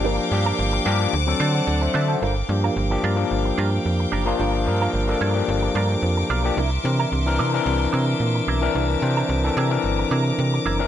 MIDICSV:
0, 0, Header, 1, 6, 480
1, 0, Start_track
1, 0, Tempo, 544465
1, 36, Time_signature, 4, 2, 24, 8
1, 9587, End_track
2, 0, Start_track
2, 0, Title_t, "String section"
2, 0, Program_c, 0, 48
2, 0, Note_on_c, 0, 70, 79
2, 0, Note_on_c, 0, 77, 75
2, 0, Note_on_c, 0, 79, 76
2, 0, Note_on_c, 0, 86, 94
2, 984, Note_off_c, 0, 70, 0
2, 985, Note_off_c, 0, 77, 0
2, 986, Note_off_c, 0, 79, 0
2, 995, Note_on_c, 0, 72, 80
2, 997, Note_on_c, 0, 81, 69
2, 1000, Note_on_c, 0, 78, 75
2, 1934, Note_off_c, 0, 86, 0
2, 1946, Note_off_c, 0, 72, 0
2, 1947, Note_off_c, 0, 81, 0
2, 1948, Note_off_c, 0, 78, 0
2, 1961, Note_on_c, 0, 70, 63
2, 1961, Note_on_c, 0, 77, 55
2, 1961, Note_on_c, 0, 79, 66
2, 1961, Note_on_c, 0, 86, 75
2, 5764, Note_off_c, 0, 77, 0
2, 5764, Note_off_c, 0, 79, 0
2, 5799, Note_on_c, 0, 76, 66
2, 5801, Note_on_c, 0, 84, 64
2, 7698, Note_off_c, 0, 84, 0
2, 7717, Note_on_c, 0, 82, 65
2, 9587, Note_off_c, 0, 70, 0
2, 9587, Note_off_c, 0, 76, 0
2, 9587, Note_off_c, 0, 82, 0
2, 9587, Note_off_c, 0, 86, 0
2, 9587, End_track
3, 0, Start_track
3, 0, Title_t, "Clean electric guitar"
3, 0, Program_c, 1, 27
3, 39, Note_on_c, 1, 62, 85
3, 44, Note_on_c, 1, 65, 82
3, 51, Note_on_c, 1, 70, 87
3, 155, Note_off_c, 1, 70, 0
3, 159, Note_off_c, 1, 62, 0
3, 161, Note_off_c, 1, 65, 0
3, 407, Note_on_c, 1, 70, 57
3, 411, Note_on_c, 1, 65, 57
3, 415, Note_on_c, 1, 62, 53
3, 489, Note_off_c, 1, 70, 0
3, 491, Note_off_c, 1, 65, 0
3, 493, Note_off_c, 1, 62, 0
3, 755, Note_on_c, 1, 62, 84
3, 764, Note_on_c, 1, 65, 89
3, 766, Note_on_c, 1, 70, 79
3, 872, Note_off_c, 1, 70, 0
3, 877, Note_off_c, 1, 62, 0
3, 881, Note_off_c, 1, 65, 0
3, 1232, Note_on_c, 1, 60, 89
3, 1240, Note_on_c, 1, 66, 85
3, 1247, Note_on_c, 1, 69, 89
3, 1352, Note_off_c, 1, 69, 0
3, 1355, Note_off_c, 1, 60, 0
3, 1359, Note_off_c, 1, 66, 0
3, 1711, Note_on_c, 1, 60, 94
3, 1719, Note_on_c, 1, 66, 99
3, 1725, Note_on_c, 1, 69, 103
3, 1824, Note_off_c, 1, 69, 0
3, 1831, Note_off_c, 1, 66, 0
3, 1835, Note_off_c, 1, 60, 0
3, 1835, Note_on_c, 1, 69, 72
3, 1842, Note_on_c, 1, 66, 72
3, 1845, Note_on_c, 1, 60, 62
3, 1923, Note_off_c, 1, 69, 0
3, 1927, Note_off_c, 1, 66, 0
3, 1928, Note_off_c, 1, 60, 0
3, 1951, Note_on_c, 1, 62, 78
3, 1960, Note_on_c, 1, 65, 77
3, 1962, Note_on_c, 1, 70, 96
3, 2072, Note_off_c, 1, 70, 0
3, 2075, Note_off_c, 1, 62, 0
3, 2079, Note_off_c, 1, 65, 0
3, 2328, Note_on_c, 1, 70, 56
3, 2336, Note_on_c, 1, 65, 60
3, 2339, Note_on_c, 1, 62, 47
3, 2410, Note_off_c, 1, 70, 0
3, 2414, Note_off_c, 1, 65, 0
3, 2415, Note_off_c, 1, 62, 0
3, 2679, Note_on_c, 1, 62, 84
3, 2684, Note_on_c, 1, 65, 99
3, 2688, Note_on_c, 1, 70, 88
3, 2799, Note_off_c, 1, 62, 0
3, 2801, Note_off_c, 1, 65, 0
3, 2803, Note_off_c, 1, 70, 0
3, 3153, Note_on_c, 1, 62, 86
3, 3159, Note_on_c, 1, 65, 90
3, 3165, Note_on_c, 1, 70, 91
3, 3273, Note_off_c, 1, 70, 0
3, 3276, Note_off_c, 1, 62, 0
3, 3279, Note_off_c, 1, 65, 0
3, 3631, Note_on_c, 1, 62, 82
3, 3638, Note_on_c, 1, 65, 76
3, 3639, Note_on_c, 1, 70, 95
3, 3747, Note_off_c, 1, 70, 0
3, 3754, Note_off_c, 1, 65, 0
3, 3755, Note_off_c, 1, 62, 0
3, 3757, Note_on_c, 1, 70, 63
3, 3765, Note_on_c, 1, 65, 56
3, 3770, Note_on_c, 1, 62, 59
3, 3845, Note_off_c, 1, 70, 0
3, 3848, Note_off_c, 1, 65, 0
3, 3851, Note_off_c, 1, 62, 0
3, 3874, Note_on_c, 1, 62, 87
3, 3881, Note_on_c, 1, 65, 85
3, 3885, Note_on_c, 1, 70, 98
3, 3997, Note_off_c, 1, 62, 0
3, 3997, Note_off_c, 1, 70, 0
3, 4000, Note_off_c, 1, 65, 0
3, 4247, Note_on_c, 1, 70, 63
3, 4252, Note_on_c, 1, 65, 58
3, 4257, Note_on_c, 1, 62, 47
3, 4329, Note_off_c, 1, 70, 0
3, 4332, Note_off_c, 1, 65, 0
3, 4335, Note_off_c, 1, 62, 0
3, 4593, Note_on_c, 1, 62, 76
3, 4598, Note_on_c, 1, 65, 97
3, 4601, Note_on_c, 1, 70, 86
3, 4711, Note_off_c, 1, 70, 0
3, 4717, Note_off_c, 1, 65, 0
3, 4774, Note_off_c, 1, 62, 0
3, 5076, Note_on_c, 1, 62, 90
3, 5081, Note_on_c, 1, 65, 87
3, 5089, Note_on_c, 1, 70, 104
3, 5197, Note_off_c, 1, 62, 0
3, 5197, Note_off_c, 1, 70, 0
3, 5200, Note_off_c, 1, 65, 0
3, 5555, Note_on_c, 1, 62, 103
3, 5560, Note_on_c, 1, 65, 94
3, 5566, Note_on_c, 1, 70, 89
3, 5674, Note_off_c, 1, 70, 0
3, 5677, Note_off_c, 1, 62, 0
3, 5680, Note_off_c, 1, 65, 0
3, 5685, Note_on_c, 1, 70, 58
3, 5691, Note_on_c, 1, 65, 62
3, 5695, Note_on_c, 1, 62, 55
3, 5768, Note_off_c, 1, 70, 0
3, 5771, Note_off_c, 1, 65, 0
3, 5774, Note_off_c, 1, 62, 0
3, 5795, Note_on_c, 1, 62, 84
3, 5804, Note_on_c, 1, 64, 91
3, 5809, Note_on_c, 1, 70, 82
3, 5915, Note_off_c, 1, 70, 0
3, 5917, Note_off_c, 1, 62, 0
3, 5921, Note_off_c, 1, 64, 0
3, 6167, Note_on_c, 1, 70, 62
3, 6171, Note_on_c, 1, 64, 53
3, 6175, Note_on_c, 1, 62, 49
3, 6249, Note_off_c, 1, 70, 0
3, 6251, Note_off_c, 1, 64, 0
3, 6253, Note_off_c, 1, 62, 0
3, 6516, Note_on_c, 1, 62, 82
3, 6522, Note_on_c, 1, 64, 77
3, 6527, Note_on_c, 1, 70, 94
3, 6634, Note_off_c, 1, 70, 0
3, 6638, Note_off_c, 1, 62, 0
3, 6640, Note_off_c, 1, 64, 0
3, 6988, Note_on_c, 1, 62, 83
3, 6998, Note_on_c, 1, 64, 88
3, 6998, Note_on_c, 1, 70, 90
3, 7107, Note_off_c, 1, 70, 0
3, 7113, Note_off_c, 1, 62, 0
3, 7115, Note_off_c, 1, 64, 0
3, 7478, Note_on_c, 1, 62, 94
3, 7482, Note_on_c, 1, 64, 94
3, 7488, Note_on_c, 1, 70, 98
3, 7591, Note_off_c, 1, 70, 0
3, 7598, Note_off_c, 1, 62, 0
3, 7600, Note_off_c, 1, 64, 0
3, 7602, Note_on_c, 1, 70, 66
3, 7611, Note_on_c, 1, 64, 56
3, 7618, Note_on_c, 1, 62, 55
3, 7686, Note_off_c, 1, 70, 0
3, 7691, Note_off_c, 1, 64, 0
3, 7694, Note_off_c, 1, 62, 0
3, 7716, Note_on_c, 1, 62, 87
3, 7722, Note_on_c, 1, 64, 85
3, 7729, Note_on_c, 1, 70, 88
3, 7834, Note_off_c, 1, 70, 0
3, 7837, Note_off_c, 1, 62, 0
3, 7840, Note_off_c, 1, 64, 0
3, 8084, Note_on_c, 1, 70, 57
3, 8090, Note_on_c, 1, 64, 52
3, 8095, Note_on_c, 1, 62, 51
3, 8167, Note_off_c, 1, 70, 0
3, 8170, Note_off_c, 1, 64, 0
3, 8172, Note_off_c, 1, 62, 0
3, 8441, Note_on_c, 1, 62, 78
3, 8445, Note_on_c, 1, 64, 85
3, 8452, Note_on_c, 1, 70, 74
3, 8559, Note_off_c, 1, 62, 0
3, 8559, Note_off_c, 1, 70, 0
3, 8561, Note_off_c, 1, 64, 0
3, 8915, Note_on_c, 1, 62, 84
3, 8923, Note_on_c, 1, 64, 83
3, 8926, Note_on_c, 1, 70, 109
3, 9035, Note_off_c, 1, 70, 0
3, 9036, Note_off_c, 1, 62, 0
3, 9039, Note_off_c, 1, 64, 0
3, 9393, Note_on_c, 1, 62, 84
3, 9399, Note_on_c, 1, 64, 102
3, 9402, Note_on_c, 1, 70, 92
3, 9509, Note_off_c, 1, 70, 0
3, 9514, Note_off_c, 1, 62, 0
3, 9514, Note_off_c, 1, 64, 0
3, 9519, Note_on_c, 1, 70, 62
3, 9525, Note_on_c, 1, 64, 56
3, 9529, Note_on_c, 1, 62, 55
3, 9587, Note_off_c, 1, 62, 0
3, 9587, Note_off_c, 1, 64, 0
3, 9587, Note_off_c, 1, 70, 0
3, 9587, End_track
4, 0, Start_track
4, 0, Title_t, "Tine electric piano"
4, 0, Program_c, 2, 4
4, 0, Control_c, 2, 64, 127
4, 0, Note_on_c, 2, 53, 100
4, 0, Note_on_c, 2, 58, 90
4, 0, Note_on_c, 2, 62, 84
4, 0, Note_on_c, 2, 67, 102
4, 183, Note_off_c, 2, 53, 0
4, 184, Note_off_c, 2, 58, 0
4, 187, Note_off_c, 2, 62, 0
4, 190, Note_off_c, 2, 67, 0
4, 274, Note_on_c, 2, 53, 70
4, 277, Note_on_c, 2, 58, 70
4, 283, Note_on_c, 2, 62, 75
4, 288, Note_on_c, 2, 67, 96
4, 650, Note_off_c, 2, 53, 0
4, 652, Note_off_c, 2, 58, 0
4, 655, Note_off_c, 2, 62, 0
4, 657, Note_off_c, 2, 67, 0
4, 751, Note_on_c, 2, 53, 100
4, 754, Note_on_c, 2, 58, 101
4, 757, Note_on_c, 2, 62, 97
4, 761, Note_on_c, 2, 67, 118
4, 993, Note_off_c, 2, 53, 0
4, 995, Note_off_c, 2, 58, 0
4, 996, Note_off_c, 2, 62, 0
4, 998, Note_off_c, 2, 67, 0
4, 1006, Control_c, 2, 64, 0
4, 1116, Note_on_c, 2, 54, 82
4, 1121, Note_on_c, 2, 60, 91
4, 1129, Note_on_c, 2, 62, 84
4, 1132, Note_on_c, 2, 69, 95
4, 1169, Control_c, 2, 64, 127
4, 1238, Note_on_c, 2, 74, 72
4, 1240, Note_off_c, 2, 69, 0
4, 1358, Note_off_c, 2, 74, 0
4, 1363, Note_on_c, 2, 78, 67
4, 1368, Note_on_c, 2, 74, 53
4, 1461, Note_off_c, 2, 74, 0
4, 1472, Note_on_c, 2, 74, 71
4, 1591, Note_off_c, 2, 78, 0
4, 1604, Note_on_c, 2, 76, 68
4, 1608, Note_on_c, 2, 72, 63
4, 1697, Note_off_c, 2, 74, 0
4, 1703, Note_off_c, 2, 76, 0
4, 1713, Note_off_c, 2, 72, 0
4, 1713, Note_on_c, 2, 76, 73
4, 1716, Note_on_c, 2, 74, 70
4, 1760, Note_off_c, 2, 54, 0
4, 1763, Note_off_c, 2, 60, 0
4, 1767, Note_off_c, 2, 62, 0
4, 1836, Note_on_c, 2, 72, 65
4, 1837, Note_off_c, 2, 74, 0
4, 1840, Note_on_c, 2, 69, 62
4, 1938, Note_off_c, 2, 76, 0
4, 1968, Control_c, 2, 64, 0
4, 2067, Note_off_c, 2, 72, 0
4, 2069, Note_off_c, 2, 69, 0
4, 2134, Control_c, 2, 64, 127
4, 2190, Note_on_c, 2, 53, 83
4, 2193, Note_on_c, 2, 58, 74
4, 2198, Note_on_c, 2, 62, 68
4, 2204, Note_on_c, 2, 67, 87
4, 2472, Note_off_c, 2, 53, 0
4, 2473, Note_off_c, 2, 58, 0
4, 2476, Note_off_c, 2, 62, 0
4, 2479, Note_off_c, 2, 67, 0
4, 2557, Note_on_c, 2, 53, 83
4, 2565, Note_on_c, 2, 58, 74
4, 2569, Note_on_c, 2, 62, 71
4, 2572, Note_on_c, 2, 67, 91
4, 2741, Note_off_c, 2, 53, 0
4, 2745, Note_off_c, 2, 58, 0
4, 2747, Note_off_c, 2, 62, 0
4, 2749, Note_off_c, 2, 67, 0
4, 2786, Note_on_c, 2, 53, 83
4, 2789, Note_on_c, 2, 58, 75
4, 2797, Note_on_c, 2, 62, 76
4, 2801, Note_on_c, 2, 70, 84
4, 3531, Note_off_c, 2, 53, 0
4, 3533, Note_off_c, 2, 58, 0
4, 3537, Note_off_c, 2, 62, 0
4, 3539, Note_off_c, 2, 70, 0
4, 3753, Note_on_c, 2, 53, 100
4, 3757, Note_on_c, 2, 58, 81
4, 3764, Note_on_c, 2, 62, 86
4, 3765, Note_on_c, 2, 65, 106
4, 4033, Note_off_c, 2, 53, 0
4, 4034, Note_off_c, 2, 58, 0
4, 4038, Note_off_c, 2, 62, 0
4, 4039, Note_off_c, 2, 65, 0
4, 4106, Note_on_c, 2, 53, 81
4, 4106, Note_on_c, 2, 58, 71
4, 4113, Note_on_c, 2, 62, 67
4, 4120, Note_on_c, 2, 70, 94
4, 4390, Note_off_c, 2, 53, 0
4, 4390, Note_off_c, 2, 58, 0
4, 4393, Note_off_c, 2, 62, 0
4, 4397, Note_off_c, 2, 70, 0
4, 4475, Note_on_c, 2, 53, 86
4, 4476, Note_on_c, 2, 58, 73
4, 4483, Note_on_c, 2, 62, 78
4, 4486, Note_on_c, 2, 69, 94
4, 4660, Note_off_c, 2, 53, 0
4, 4661, Note_off_c, 2, 58, 0
4, 4664, Note_off_c, 2, 62, 0
4, 4666, Note_off_c, 2, 69, 0
4, 4709, Note_on_c, 2, 53, 77
4, 4714, Note_on_c, 2, 58, 74
4, 4717, Note_on_c, 2, 62, 81
4, 4723, Note_on_c, 2, 67, 94
4, 5453, Note_off_c, 2, 53, 0
4, 5455, Note_off_c, 2, 58, 0
4, 5457, Note_off_c, 2, 62, 0
4, 5460, Note_off_c, 2, 67, 0
4, 5677, Note_on_c, 2, 53, 91
4, 5683, Note_on_c, 2, 58, 82
4, 5688, Note_on_c, 2, 62, 95
4, 5690, Note_on_c, 2, 67, 110
4, 5793, Note_off_c, 2, 53, 0
4, 5796, Note_off_c, 2, 58, 0
4, 5798, Note_off_c, 2, 62, 0
4, 5800, Note_off_c, 2, 67, 0
4, 5806, Control_c, 2, 64, 0
4, 5938, Control_c, 2, 64, 127
4, 6026, Note_on_c, 2, 52, 76
4, 6035, Note_on_c, 2, 60, 74
4, 6037, Note_on_c, 2, 62, 69
4, 6042, Note_on_c, 2, 70, 87
4, 6310, Note_off_c, 2, 52, 0
4, 6314, Note_off_c, 2, 60, 0
4, 6315, Note_off_c, 2, 62, 0
4, 6318, Note_off_c, 2, 70, 0
4, 6401, Note_on_c, 2, 52, 85
4, 6403, Note_on_c, 2, 60, 81
4, 6406, Note_on_c, 2, 62, 75
4, 6413, Note_on_c, 2, 70, 102
4, 6583, Note_off_c, 2, 52, 0
4, 6584, Note_off_c, 2, 60, 0
4, 6586, Note_off_c, 2, 62, 0
4, 6589, Note_off_c, 2, 70, 0
4, 6645, Note_on_c, 2, 52, 91
4, 6645, Note_on_c, 2, 60, 83
4, 6649, Note_on_c, 2, 62, 80
4, 6655, Note_on_c, 2, 70, 94
4, 7380, Note_off_c, 2, 52, 0
4, 7380, Note_off_c, 2, 60, 0
4, 7382, Note_off_c, 2, 62, 0
4, 7385, Note_off_c, 2, 70, 0
4, 7594, Note_on_c, 2, 52, 102
4, 7599, Note_on_c, 2, 60, 86
4, 7602, Note_on_c, 2, 62, 92
4, 7606, Note_on_c, 2, 70, 113
4, 7872, Note_off_c, 2, 52, 0
4, 7875, Note_off_c, 2, 60, 0
4, 7876, Note_off_c, 2, 62, 0
4, 7878, Note_off_c, 2, 70, 0
4, 7945, Note_on_c, 2, 52, 78
4, 7952, Note_on_c, 2, 60, 76
4, 7958, Note_on_c, 2, 62, 80
4, 7959, Note_on_c, 2, 72, 94
4, 8228, Note_off_c, 2, 52, 0
4, 8232, Note_off_c, 2, 60, 0
4, 8235, Note_off_c, 2, 62, 0
4, 8235, Note_off_c, 2, 72, 0
4, 8317, Note_on_c, 2, 52, 85
4, 8321, Note_on_c, 2, 62, 68
4, 8323, Note_on_c, 2, 60, 82
4, 8328, Note_on_c, 2, 69, 94
4, 8500, Note_off_c, 2, 52, 0
4, 8502, Note_off_c, 2, 62, 0
4, 8503, Note_off_c, 2, 60, 0
4, 8506, Note_off_c, 2, 69, 0
4, 8553, Note_on_c, 2, 52, 78
4, 8554, Note_on_c, 2, 60, 78
4, 8562, Note_on_c, 2, 62, 82
4, 8563, Note_on_c, 2, 70, 90
4, 9292, Note_off_c, 2, 52, 0
4, 9293, Note_off_c, 2, 60, 0
4, 9297, Note_off_c, 2, 62, 0
4, 9297, Note_off_c, 2, 70, 0
4, 9513, Note_on_c, 2, 52, 97
4, 9516, Note_on_c, 2, 60, 86
4, 9520, Note_on_c, 2, 62, 89
4, 9528, Note_on_c, 2, 70, 108
4, 9587, Note_off_c, 2, 52, 0
4, 9587, Note_off_c, 2, 60, 0
4, 9587, Note_off_c, 2, 62, 0
4, 9587, Note_off_c, 2, 70, 0
4, 9587, End_track
5, 0, Start_track
5, 0, Title_t, "FM bass"
5, 0, Program_c, 3, 39
5, 0, Note_on_c, 3, 31, 100
5, 170, Note_off_c, 3, 31, 0
5, 278, Note_on_c, 3, 43, 83
5, 464, Note_off_c, 3, 43, 0
5, 520, Note_on_c, 3, 31, 96
5, 705, Note_off_c, 3, 31, 0
5, 759, Note_on_c, 3, 43, 109
5, 945, Note_off_c, 3, 43, 0
5, 999, Note_on_c, 3, 38, 102
5, 1185, Note_off_c, 3, 38, 0
5, 1235, Note_on_c, 3, 50, 111
5, 1423, Note_off_c, 3, 50, 0
5, 1476, Note_on_c, 3, 38, 90
5, 1663, Note_off_c, 3, 38, 0
5, 1717, Note_on_c, 3, 50, 92
5, 1904, Note_off_c, 3, 50, 0
5, 1959, Note_on_c, 3, 31, 109
5, 2145, Note_off_c, 3, 31, 0
5, 2195, Note_on_c, 3, 43, 94
5, 2382, Note_off_c, 3, 43, 0
5, 2438, Note_on_c, 3, 31, 99
5, 2624, Note_off_c, 3, 31, 0
5, 2677, Note_on_c, 3, 43, 98
5, 2864, Note_off_c, 3, 43, 0
5, 2919, Note_on_c, 3, 31, 96
5, 3105, Note_off_c, 3, 31, 0
5, 3158, Note_on_c, 3, 43, 111
5, 3344, Note_off_c, 3, 43, 0
5, 3400, Note_on_c, 3, 41, 74
5, 3585, Note_off_c, 3, 41, 0
5, 3635, Note_on_c, 3, 30, 71
5, 3823, Note_off_c, 3, 30, 0
5, 3877, Note_on_c, 3, 31, 91
5, 4117, Note_on_c, 3, 43, 109
5, 4130, Note_off_c, 3, 31, 0
5, 4304, Note_off_c, 3, 43, 0
5, 4353, Note_on_c, 3, 31, 87
5, 4541, Note_off_c, 3, 31, 0
5, 4595, Note_on_c, 3, 43, 105
5, 4783, Note_off_c, 3, 43, 0
5, 4835, Note_on_c, 3, 31, 120
5, 5023, Note_off_c, 3, 31, 0
5, 5070, Note_on_c, 3, 43, 107
5, 5259, Note_off_c, 3, 43, 0
5, 5311, Note_on_c, 3, 41, 87
5, 5500, Note_off_c, 3, 41, 0
5, 5554, Note_on_c, 3, 35, 99
5, 5742, Note_off_c, 3, 35, 0
5, 5794, Note_on_c, 3, 36, 110
5, 5982, Note_off_c, 3, 36, 0
5, 6038, Note_on_c, 3, 48, 108
5, 6224, Note_off_c, 3, 48, 0
5, 6277, Note_on_c, 3, 36, 95
5, 6515, Note_on_c, 3, 48, 92
5, 6528, Note_off_c, 3, 36, 0
5, 6702, Note_off_c, 3, 48, 0
5, 6753, Note_on_c, 3, 36, 111
5, 6941, Note_off_c, 3, 36, 0
5, 6996, Note_on_c, 3, 48, 97
5, 7183, Note_off_c, 3, 48, 0
5, 7230, Note_on_c, 3, 46, 79
5, 7419, Note_off_c, 3, 46, 0
5, 7473, Note_on_c, 3, 35, 97
5, 7661, Note_off_c, 3, 35, 0
5, 7715, Note_on_c, 3, 36, 113
5, 7902, Note_off_c, 3, 36, 0
5, 7953, Note_on_c, 3, 48, 92
5, 8141, Note_off_c, 3, 48, 0
5, 8191, Note_on_c, 3, 36, 102
5, 8379, Note_off_c, 3, 36, 0
5, 8434, Note_on_c, 3, 48, 118
5, 8621, Note_off_c, 3, 48, 0
5, 8674, Note_on_c, 3, 31, 90
5, 8861, Note_off_c, 3, 31, 0
5, 8913, Note_on_c, 3, 48, 98
5, 9100, Note_off_c, 3, 48, 0
5, 9156, Note_on_c, 3, 48, 93
5, 9342, Note_off_c, 3, 48, 0
5, 9396, Note_on_c, 3, 30, 89
5, 9582, Note_off_c, 3, 30, 0
5, 9587, End_track
6, 0, Start_track
6, 0, Title_t, "Muted clean electric guitar strokes"
6, 281, Note_on_c, 9, 29, 44
6, 369, Note_off_c, 9, 29, 0
6, 642, Note_on_c, 9, 29, 51
6, 730, Note_off_c, 9, 29, 0
6, 1126, Note_on_c, 9, 29, 52
6, 1214, Note_off_c, 9, 29, 0
6, 1362, Note_on_c, 9, 29, 48
6, 1450, Note_off_c, 9, 29, 0
6, 1475, Note_on_c, 9, 29, 44
6, 1563, Note_off_c, 9, 29, 0
6, 1602, Note_on_c, 9, 29, 42
6, 1690, Note_off_c, 9, 29, 0
6, 2083, Note_on_c, 9, 29, 44
6, 2171, Note_off_c, 9, 29, 0
6, 2194, Note_on_c, 9, 29, 33
6, 2282, Note_off_c, 9, 29, 0
6, 2567, Note_on_c, 9, 29, 45
6, 2655, Note_off_c, 9, 29, 0
6, 2814, Note_on_c, 9, 29, 41
6, 2902, Note_off_c, 9, 29, 0
6, 3046, Note_on_c, 9, 29, 49
6, 3134, Note_off_c, 9, 29, 0
6, 3398, Note_on_c, 9, 29, 48
6, 3487, Note_off_c, 9, 29, 0
6, 3526, Note_on_c, 9, 29, 43
6, 3614, Note_off_c, 9, 29, 0
6, 4121, Note_on_c, 9, 29, 43
6, 4209, Note_off_c, 9, 29, 0
6, 4487, Note_on_c, 9, 29, 49
6, 4575, Note_off_c, 9, 29, 0
6, 4722, Note_on_c, 9, 29, 44
6, 4810, Note_off_c, 9, 29, 0
6, 4959, Note_on_c, 9, 29, 47
6, 5048, Note_off_c, 9, 29, 0
6, 5208, Note_on_c, 9, 29, 45
6, 5296, Note_off_c, 9, 29, 0
6, 5320, Note_on_c, 9, 29, 43
6, 5408, Note_off_c, 9, 29, 0
6, 5443, Note_on_c, 9, 29, 45
6, 5531, Note_off_c, 9, 29, 0
6, 5926, Note_on_c, 9, 29, 48
6, 6014, Note_off_c, 9, 29, 0
6, 6042, Note_on_c, 9, 29, 38
6, 6131, Note_off_c, 9, 29, 0
6, 6406, Note_on_c, 9, 29, 46
6, 6494, Note_off_c, 9, 29, 0
6, 6645, Note_on_c, 9, 29, 54
6, 6733, Note_off_c, 9, 29, 0
6, 6879, Note_on_c, 9, 29, 41
6, 6967, Note_off_c, 9, 29, 0
6, 7117, Note_on_c, 9, 29, 48
6, 7205, Note_off_c, 9, 29, 0
6, 7235, Note_on_c, 9, 29, 51
6, 7323, Note_off_c, 9, 29, 0
6, 7365, Note_on_c, 9, 29, 51
6, 7453, Note_off_c, 9, 29, 0
6, 7845, Note_on_c, 9, 29, 47
6, 7933, Note_off_c, 9, 29, 0
6, 7955, Note_on_c, 9, 29, 41
6, 8043, Note_off_c, 9, 29, 0
6, 8330, Note_on_c, 9, 29, 42
6, 8418, Note_off_c, 9, 29, 0
6, 8809, Note_on_c, 9, 29, 55
6, 8897, Note_off_c, 9, 29, 0
6, 9046, Note_on_c, 9, 29, 52
6, 9134, Note_off_c, 9, 29, 0
6, 9157, Note_on_c, 9, 29, 42
6, 9245, Note_off_c, 9, 29, 0
6, 9288, Note_on_c, 9, 29, 38
6, 9376, Note_off_c, 9, 29, 0
6, 9587, End_track
0, 0, End_of_file